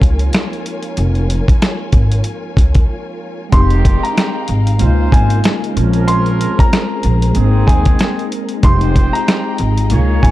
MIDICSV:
0, 0, Header, 1, 7, 480
1, 0, Start_track
1, 0, Key_signature, -4, "minor"
1, 0, Tempo, 638298
1, 732, Time_signature, 4, 2, 24, 8
1, 7755, End_track
2, 0, Start_track
2, 0, Title_t, "Upright piano"
2, 0, Program_c, 0, 0
2, 2650, Note_on_c, 0, 84, 93
2, 3011, Note_off_c, 0, 84, 0
2, 3033, Note_on_c, 0, 82, 79
2, 3821, Note_off_c, 0, 82, 0
2, 3855, Note_on_c, 0, 80, 79
2, 4213, Note_off_c, 0, 80, 0
2, 4569, Note_on_c, 0, 84, 97
2, 4930, Note_off_c, 0, 84, 0
2, 4960, Note_on_c, 0, 82, 86
2, 5745, Note_off_c, 0, 82, 0
2, 5768, Note_on_c, 0, 80, 83
2, 6130, Note_off_c, 0, 80, 0
2, 6499, Note_on_c, 0, 84, 92
2, 6855, Note_off_c, 0, 84, 0
2, 6867, Note_on_c, 0, 82, 90
2, 7658, Note_off_c, 0, 82, 0
2, 7691, Note_on_c, 0, 80, 79
2, 7755, Note_off_c, 0, 80, 0
2, 7755, End_track
3, 0, Start_track
3, 0, Title_t, "String section"
3, 0, Program_c, 1, 48
3, 0, Note_on_c, 1, 65, 74
3, 0, Note_on_c, 1, 70, 72
3, 0, Note_on_c, 1, 73, 75
3, 0, Note_on_c, 1, 80, 90
3, 2619, Note_off_c, 1, 70, 0
3, 2619, Note_off_c, 1, 73, 0
3, 2619, Note_off_c, 1, 80, 0
3, 2623, Note_off_c, 1, 65, 0
3, 2639, Note_on_c, 1, 56, 78
3, 2639, Note_on_c, 1, 63, 79
3, 2639, Note_on_c, 1, 77, 77
3, 2639, Note_on_c, 1, 79, 95
3, 3596, Note_off_c, 1, 56, 0
3, 3596, Note_off_c, 1, 63, 0
3, 3596, Note_off_c, 1, 79, 0
3, 3624, Note_on_c, 1, 75, 74
3, 3625, Note_on_c, 1, 49, 88
3, 3626, Note_on_c, 1, 70, 77
3, 4309, Note_off_c, 1, 77, 0
3, 4331, Note_off_c, 1, 75, 0
3, 4333, Note_on_c, 1, 68, 90
3, 4334, Note_on_c, 1, 72, 77
3, 5520, Note_off_c, 1, 49, 0
3, 5531, Note_on_c, 1, 63, 76
3, 6470, Note_off_c, 1, 70, 0
3, 6471, Note_off_c, 1, 68, 0
3, 6471, Note_off_c, 1, 72, 0
3, 6482, Note_off_c, 1, 63, 0
3, 6489, Note_on_c, 1, 56, 72
3, 6490, Note_on_c, 1, 65, 76
3, 6490, Note_on_c, 1, 75, 76
3, 6490, Note_on_c, 1, 79, 90
3, 7441, Note_off_c, 1, 56, 0
3, 7441, Note_off_c, 1, 65, 0
3, 7441, Note_off_c, 1, 79, 0
3, 7452, Note_on_c, 1, 49, 90
3, 7452, Note_on_c, 1, 70, 74
3, 7452, Note_on_c, 1, 77, 90
3, 7755, Note_off_c, 1, 49, 0
3, 7755, Note_off_c, 1, 70, 0
3, 7755, Note_off_c, 1, 75, 0
3, 7755, Note_off_c, 1, 77, 0
3, 7755, End_track
4, 0, Start_track
4, 0, Title_t, "Horn section"
4, 0, Program_c, 2, 61
4, 2657, Note_on_c, 2, 51, 85
4, 2657, Note_on_c, 2, 60, 77
4, 2657, Note_on_c, 2, 67, 87
4, 3360, Note_off_c, 2, 51, 0
4, 3360, Note_off_c, 2, 60, 0
4, 3360, Note_off_c, 2, 67, 0
4, 3611, Note_on_c, 2, 65, 81
4, 3611, Note_on_c, 2, 72, 88
4, 3612, Note_on_c, 2, 56, 84
4, 4082, Note_off_c, 2, 56, 0
4, 4082, Note_off_c, 2, 65, 0
4, 4082, Note_off_c, 2, 72, 0
4, 4328, Note_on_c, 2, 53, 84
4, 4328, Note_on_c, 2, 61, 84
4, 4328, Note_on_c, 2, 70, 90
4, 5271, Note_off_c, 2, 53, 0
4, 5271, Note_off_c, 2, 61, 0
4, 5271, Note_off_c, 2, 70, 0
4, 5527, Note_on_c, 2, 51, 83
4, 5527, Note_on_c, 2, 60, 87
4, 5528, Note_on_c, 2, 68, 95
4, 6235, Note_off_c, 2, 51, 0
4, 6235, Note_off_c, 2, 60, 0
4, 6235, Note_off_c, 2, 68, 0
4, 6498, Note_on_c, 2, 56, 81
4, 6498, Note_on_c, 2, 67, 81
4, 6498, Note_on_c, 2, 72, 91
4, 7201, Note_off_c, 2, 56, 0
4, 7201, Note_off_c, 2, 67, 0
4, 7201, Note_off_c, 2, 72, 0
4, 7459, Note_on_c, 2, 68, 79
4, 7460, Note_on_c, 2, 58, 84
4, 7460, Note_on_c, 2, 73, 94
4, 7755, Note_off_c, 2, 58, 0
4, 7755, Note_off_c, 2, 68, 0
4, 7755, Note_off_c, 2, 73, 0
4, 7755, End_track
5, 0, Start_track
5, 0, Title_t, "Tine electric piano"
5, 0, Program_c, 3, 4
5, 0, Control_c, 3, 64, 127
5, 0, Note_on_c, 3, 53, 72
5, 0, Note_on_c, 3, 56, 72
5, 0, Note_on_c, 3, 58, 73
5, 0, Note_on_c, 3, 63, 85
5, 689, Note_off_c, 3, 53, 0
5, 698, Note_off_c, 3, 56, 0
5, 708, Note_off_c, 3, 58, 0
5, 717, Note_off_c, 3, 63, 0
5, 2624, Note_on_c, 3, 55, 56
5, 2643, Note_on_c, 3, 60, 71
5, 2661, Control_c, 3, 64, 0
5, 2662, Note_on_c, 3, 63, 67
5, 2673, Note_on_c, 3, 56, 68
5, 2681, Note_on_c, 3, 67, 72
5, 2696, Note_off_c, 3, 55, 0
5, 2779, Control_c, 3, 64, 127
5, 3588, Note_off_c, 3, 60, 0
5, 3589, Note_off_c, 3, 56, 0
5, 3598, Note_off_c, 3, 63, 0
5, 3598, Note_on_c, 3, 56, 87
5, 3607, Note_off_c, 3, 67, 0
5, 3607, Note_on_c, 3, 58, 82
5, 3617, Note_on_c, 3, 63, 74
5, 3621, Control_c, 3, 64, 0
5, 3626, Note_on_c, 3, 65, 95
5, 3768, Control_c, 3, 64, 127
5, 4298, Note_off_c, 3, 56, 0
5, 4307, Note_on_c, 3, 56, 81
5, 4326, Note_on_c, 3, 60, 73
5, 4330, Note_off_c, 3, 58, 0
5, 4334, Note_off_c, 3, 63, 0
5, 4339, Note_off_c, 3, 65, 0
5, 4340, Control_c, 3, 64, 0
5, 4345, Note_on_c, 3, 61, 75
5, 4364, Note_on_c, 3, 65, 89
5, 4479, Control_c, 3, 64, 127
5, 5492, Note_off_c, 3, 56, 0
5, 5501, Note_on_c, 3, 56, 78
5, 5505, Note_off_c, 3, 60, 0
5, 5515, Note_off_c, 3, 61, 0
5, 5521, Note_on_c, 3, 58, 75
5, 5524, Note_off_c, 3, 65, 0
5, 5539, Note_on_c, 3, 60, 76
5, 5540, Control_c, 3, 64, 0
5, 5559, Note_on_c, 3, 62, 63
5, 5604, Note_off_c, 3, 62, 0
5, 5608, Note_on_c, 3, 63, 84
5, 5674, Control_c, 3, 64, 127
5, 6457, Note_off_c, 3, 56, 0
5, 6463, Note_on_c, 3, 55, 56
5, 6467, Note_off_c, 3, 58, 0
5, 6473, Note_off_c, 3, 60, 0
5, 6482, Note_on_c, 3, 60, 67
5, 6491, Note_off_c, 3, 63, 0
5, 6500, Note_on_c, 3, 63, 69
5, 6503, Control_c, 3, 64, 0
5, 6512, Note_on_c, 3, 56, 69
5, 6519, Note_on_c, 3, 67, 71
5, 6536, Note_off_c, 3, 55, 0
5, 6622, Control_c, 3, 64, 127
5, 7428, Note_off_c, 3, 60, 0
5, 7429, Note_off_c, 3, 56, 0
5, 7437, Note_off_c, 3, 63, 0
5, 7438, Note_on_c, 3, 56, 87
5, 7447, Note_off_c, 3, 67, 0
5, 7447, Note_on_c, 3, 58, 82
5, 7456, Note_on_c, 3, 63, 72
5, 7462, Control_c, 3, 64, 0
5, 7467, Note_on_c, 3, 65, 90
5, 7615, Control_c, 3, 64, 127
5, 7755, Note_off_c, 3, 56, 0
5, 7755, Note_off_c, 3, 58, 0
5, 7755, Note_off_c, 3, 63, 0
5, 7755, Note_off_c, 3, 65, 0
5, 7755, End_track
6, 0, Start_track
6, 0, Title_t, "Upright bass"
6, 0, Program_c, 4, 32
6, 14, Note_on_c, 4, 37, 84
6, 208, Note_off_c, 4, 37, 0
6, 735, Note_on_c, 4, 29, 108
6, 1043, Note_off_c, 4, 29, 0
6, 1452, Note_on_c, 4, 32, 89
6, 1646, Note_off_c, 4, 32, 0
6, 1933, Note_on_c, 4, 37, 80
6, 2127, Note_off_c, 4, 37, 0
6, 2654, Note_on_c, 4, 29, 112
6, 2963, Note_off_c, 4, 29, 0
6, 3376, Note_on_c, 4, 32, 93
6, 3616, Note_on_c, 4, 37, 99
6, 3627, Note_off_c, 4, 32, 0
6, 3809, Note_off_c, 4, 37, 0
6, 3855, Note_on_c, 4, 32, 94
6, 4048, Note_off_c, 4, 32, 0
6, 4336, Note_on_c, 4, 34, 104
6, 4839, Note_off_c, 4, 34, 0
6, 5297, Note_on_c, 4, 34, 99
6, 5489, Note_off_c, 4, 34, 0
6, 5537, Note_on_c, 4, 32, 98
6, 5729, Note_off_c, 4, 32, 0
6, 5775, Note_on_c, 4, 39, 94
6, 5968, Note_off_c, 4, 39, 0
6, 6495, Note_on_c, 4, 29, 115
6, 6803, Note_off_c, 4, 29, 0
6, 7216, Note_on_c, 4, 32, 97
6, 7456, Note_on_c, 4, 37, 97
6, 7467, Note_off_c, 4, 32, 0
6, 7649, Note_off_c, 4, 37, 0
6, 7694, Note_on_c, 4, 32, 97
6, 7755, Note_off_c, 4, 32, 0
6, 7755, End_track
7, 0, Start_track
7, 0, Title_t, "Drums"
7, 12, Note_on_c, 9, 36, 94
7, 24, Note_on_c, 9, 42, 74
7, 87, Note_off_c, 9, 36, 0
7, 99, Note_off_c, 9, 42, 0
7, 146, Note_on_c, 9, 42, 57
7, 221, Note_off_c, 9, 42, 0
7, 248, Note_on_c, 9, 42, 86
7, 260, Note_on_c, 9, 38, 115
7, 323, Note_off_c, 9, 42, 0
7, 335, Note_off_c, 9, 38, 0
7, 399, Note_on_c, 9, 42, 36
7, 474, Note_off_c, 9, 42, 0
7, 496, Note_on_c, 9, 42, 69
7, 571, Note_off_c, 9, 42, 0
7, 621, Note_on_c, 9, 42, 50
7, 696, Note_off_c, 9, 42, 0
7, 730, Note_on_c, 9, 42, 89
7, 805, Note_off_c, 9, 42, 0
7, 866, Note_on_c, 9, 42, 36
7, 941, Note_off_c, 9, 42, 0
7, 977, Note_on_c, 9, 42, 80
7, 1052, Note_off_c, 9, 42, 0
7, 1115, Note_on_c, 9, 36, 99
7, 1123, Note_on_c, 9, 42, 54
7, 1190, Note_off_c, 9, 36, 0
7, 1198, Note_off_c, 9, 42, 0
7, 1219, Note_on_c, 9, 42, 87
7, 1221, Note_on_c, 9, 38, 117
7, 1294, Note_off_c, 9, 42, 0
7, 1296, Note_off_c, 9, 38, 0
7, 1447, Note_on_c, 9, 42, 71
7, 1449, Note_on_c, 9, 36, 96
7, 1522, Note_off_c, 9, 42, 0
7, 1525, Note_off_c, 9, 36, 0
7, 1591, Note_on_c, 9, 42, 62
7, 1666, Note_off_c, 9, 42, 0
7, 1684, Note_on_c, 9, 42, 81
7, 1759, Note_off_c, 9, 42, 0
7, 1932, Note_on_c, 9, 36, 91
7, 1943, Note_on_c, 9, 42, 73
7, 2007, Note_off_c, 9, 36, 0
7, 2019, Note_off_c, 9, 42, 0
7, 2065, Note_on_c, 9, 42, 60
7, 2070, Note_on_c, 9, 36, 99
7, 2140, Note_off_c, 9, 42, 0
7, 2145, Note_off_c, 9, 36, 0
7, 2650, Note_on_c, 9, 42, 89
7, 2652, Note_on_c, 9, 36, 114
7, 2725, Note_off_c, 9, 42, 0
7, 2727, Note_off_c, 9, 36, 0
7, 2786, Note_on_c, 9, 42, 38
7, 2861, Note_off_c, 9, 42, 0
7, 2895, Note_on_c, 9, 36, 99
7, 2897, Note_on_c, 9, 42, 82
7, 2971, Note_off_c, 9, 36, 0
7, 2972, Note_off_c, 9, 42, 0
7, 3044, Note_on_c, 9, 42, 55
7, 3119, Note_off_c, 9, 42, 0
7, 3139, Note_on_c, 9, 42, 89
7, 3141, Note_on_c, 9, 38, 118
7, 3214, Note_off_c, 9, 42, 0
7, 3216, Note_off_c, 9, 38, 0
7, 3367, Note_on_c, 9, 42, 74
7, 3442, Note_off_c, 9, 42, 0
7, 3511, Note_on_c, 9, 42, 66
7, 3587, Note_off_c, 9, 42, 0
7, 3605, Note_on_c, 9, 42, 84
7, 3680, Note_off_c, 9, 42, 0
7, 3852, Note_on_c, 9, 36, 100
7, 3865, Note_on_c, 9, 42, 77
7, 3928, Note_off_c, 9, 36, 0
7, 3940, Note_off_c, 9, 42, 0
7, 3987, Note_on_c, 9, 42, 61
7, 4062, Note_off_c, 9, 42, 0
7, 4090, Note_on_c, 9, 42, 92
7, 4101, Note_on_c, 9, 38, 119
7, 4165, Note_off_c, 9, 42, 0
7, 4176, Note_off_c, 9, 38, 0
7, 4241, Note_on_c, 9, 42, 38
7, 4316, Note_off_c, 9, 42, 0
7, 4337, Note_on_c, 9, 42, 73
7, 4412, Note_off_c, 9, 42, 0
7, 4463, Note_on_c, 9, 42, 52
7, 4538, Note_off_c, 9, 42, 0
7, 4572, Note_on_c, 9, 42, 90
7, 4647, Note_off_c, 9, 42, 0
7, 4708, Note_on_c, 9, 42, 39
7, 4783, Note_off_c, 9, 42, 0
7, 4819, Note_on_c, 9, 42, 81
7, 4894, Note_off_c, 9, 42, 0
7, 4956, Note_on_c, 9, 36, 102
7, 4964, Note_on_c, 9, 42, 56
7, 5031, Note_off_c, 9, 36, 0
7, 5039, Note_off_c, 9, 42, 0
7, 5060, Note_on_c, 9, 42, 90
7, 5062, Note_on_c, 9, 38, 119
7, 5135, Note_off_c, 9, 42, 0
7, 5137, Note_off_c, 9, 38, 0
7, 5288, Note_on_c, 9, 42, 74
7, 5363, Note_off_c, 9, 42, 0
7, 5432, Note_on_c, 9, 42, 63
7, 5507, Note_off_c, 9, 42, 0
7, 5525, Note_on_c, 9, 42, 85
7, 5601, Note_off_c, 9, 42, 0
7, 5773, Note_on_c, 9, 36, 95
7, 5785, Note_on_c, 9, 42, 77
7, 5848, Note_off_c, 9, 36, 0
7, 5860, Note_off_c, 9, 42, 0
7, 5907, Note_on_c, 9, 42, 62
7, 5911, Note_on_c, 9, 36, 100
7, 5982, Note_off_c, 9, 42, 0
7, 5986, Note_off_c, 9, 36, 0
7, 6009, Note_on_c, 9, 42, 90
7, 6021, Note_on_c, 9, 38, 115
7, 6085, Note_off_c, 9, 42, 0
7, 6096, Note_off_c, 9, 38, 0
7, 6160, Note_on_c, 9, 42, 37
7, 6235, Note_off_c, 9, 42, 0
7, 6257, Note_on_c, 9, 42, 73
7, 6332, Note_off_c, 9, 42, 0
7, 6382, Note_on_c, 9, 42, 53
7, 6457, Note_off_c, 9, 42, 0
7, 6490, Note_on_c, 9, 42, 91
7, 6492, Note_on_c, 9, 36, 113
7, 6565, Note_off_c, 9, 42, 0
7, 6567, Note_off_c, 9, 36, 0
7, 6626, Note_on_c, 9, 42, 38
7, 6701, Note_off_c, 9, 42, 0
7, 6736, Note_on_c, 9, 36, 100
7, 6737, Note_on_c, 9, 42, 82
7, 6811, Note_off_c, 9, 36, 0
7, 6812, Note_off_c, 9, 42, 0
7, 6884, Note_on_c, 9, 42, 57
7, 6959, Note_off_c, 9, 42, 0
7, 6979, Note_on_c, 9, 42, 90
7, 6981, Note_on_c, 9, 38, 120
7, 7055, Note_off_c, 9, 42, 0
7, 7056, Note_off_c, 9, 38, 0
7, 7207, Note_on_c, 9, 42, 70
7, 7283, Note_off_c, 9, 42, 0
7, 7351, Note_on_c, 9, 42, 66
7, 7426, Note_off_c, 9, 42, 0
7, 7444, Note_on_c, 9, 42, 85
7, 7519, Note_off_c, 9, 42, 0
7, 7692, Note_on_c, 9, 36, 95
7, 7704, Note_on_c, 9, 42, 72
7, 7755, Note_off_c, 9, 36, 0
7, 7755, Note_off_c, 9, 42, 0
7, 7755, End_track
0, 0, End_of_file